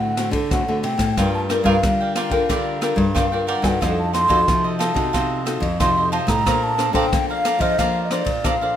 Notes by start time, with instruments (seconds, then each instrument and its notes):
Already playing: nylon-string guitar A2 D3 A3 C4 F#4, flute F#5
0.17 nylon-string guitar A3 C4 F#4, cross-stick, ride
0.31 nylon-string guitar D3, kick, ride
0.51 nylon-string guitar A2 A3 C4 F#4, flute F#5, kick, cross-stick, ride
0.68 nylon-string guitar D3 A3 C4 F#4
0.83 nylon-string guitar C3, flute G5, ride
0.98 nylon-string guitar A2, kick, cross-stick, ride
1.17 nylon-string guitar G2 G3 D4 F4 A#4, cavaquinho F4 A#4 D5 G5, kick, cross-stick, ride
1.34 flute A5
1.49 nylon-string guitar D4 F4 A#4, cavaquinho F4 A#4 D5 G5, cross-stick, ride
1.64 nylon-string guitar G2 D4 F4 A#4, cavaquinho F4 A#4 D5 G5, flute F5, kick, ride
1.83 nylon-string guitar D3 G3, kick, cross-stick, ride
2.01 cavaquinho A#4 D5 G5
2.15 cavaquinho F4 A#4 D5 G5, flute F5, cross-stick, ride
2.30 nylon-string guitar D3 D4 F4 A#4, cavaquinho A#4 D5 G5, kick, ride
2.49 nylon-string guitar D3 G3, cavaquinho F4 A#4 D5 G5, kick, cross-stick, ride
2.81 nylon-string guitar D4 F4 A#4, cavaquinho F4 A#4 D5 G5, cross-stick, ride
2.96 nylon-string guitar G2, kick, ride
3.15 nylon-string guitar D3 D4 F4 A#4, cavaquinho F4 A#4 D5 G5, flute F5, kick, cross-stick, ride
3.32 nylon-string guitar D4 F4 A#4, cavaquinho A#4 D5 G5
3.47 cavaquinho F4 A#4 D5 G5, flute F#5, ride
3.62 nylon-string guitar G2 D#4 F#4 A4, cavaquinho A#4 D5 G5, flute G#5, kick, cross-stick, ride
3.69 flute F#5
3.81 nylon-string guitar F2 F3, cavaquinho F4 A4 C5 D#5, flute F5, kick, cross-stick, ride
3.85 flute F#5
3.99 flute A5
4.13 nylon-string guitar D#4 F#4 A4, cavaquinho F4 A4 C5 D#5, flute C6, cross-stick, ride
4.28 nylon-string guitar F2 D#4 F#4 A4, cavaquinho F4 A4 C5 D#5, kick, ride
4.48 nylon-string guitar C3 F3, kick, cross-stick, ride
4.64 cavaquinho A4 C5 D#5
4.79 cavaquinho F4 A4 C5 D#5, flute A5, cross-stick, ride
4.94 nylon-string guitar C3 D#4 F#4 A4, cavaquinho A4 C5 D#5, kick, ride
5.13 nylon-string guitar C3 F3, cavaquinho F4 A4 C5 D#5, kick, cross-stick, ride
5.45 nylon-string guitar D#4 F#4 A4, cavaquinho F4 A4 C5 D#5, cross-stick, ride
5.60 nylon-string guitar F2, kick, ride
5.80 nylon-string guitar C3 D#4 F#4 A4, cavaquinho F4 A4 C5 D#5, flute C6, kick, cross-stick, ride
5.97 cavaquinho A4 C5 D#5
6.12 cavaquinho F4 A4 C5 D#5, flute A5, ride
6.27 nylon-string guitar A2, cavaquinho A4 C5 D#5, flute A#5, kick, cross-stick, ride
6.46 nylon-string guitar A#2 A#3 D4 A4 C5, cavaquinho D5 F5 A#5, kick, cross-stick, ride
6.63 flute A5
6.78 nylon-string guitar D4 A4 C5, cavaquinho A4 D5 F5 A#5, cross-stick, ride
6.93 nylon-string guitar A#2 D4 A4 C5, cavaquinho A4 D5 F5 A#5, flute G5, kick, ride
7.13 nylon-string guitar F3 A#3, kick, cross-stick, ride
7.30 cavaquinho D5 F5 A#5, flute F5
7.45 cavaquinho A4 D5 F5 A#5, cross-stick, ride
7.59 nylon-string guitar F3 D4 A4 C5, cavaquinho D5 F5 A#5, flute D#5, kick, ride
7.78 nylon-string guitar F3 A#3, cavaquinho D5 F5 A#5, flute F5, kick, cross-stick, ride
8.05 flute D#5
8.11 nylon-string guitar D4 A4 C5, cavaquinho D5 F5 A#5, flute D5, cross-stick, ride
8.25 nylon-string guitar A#2, kick, ride
8.44 nylon-string guitar F3 D4 A4 C5, cavaquinho A4 D5 F5 A#5, flute F5, kick, cross-stick, ride
8.61 nylon-string guitar D4 A4 C5, cavaquinho D5 F5 A#5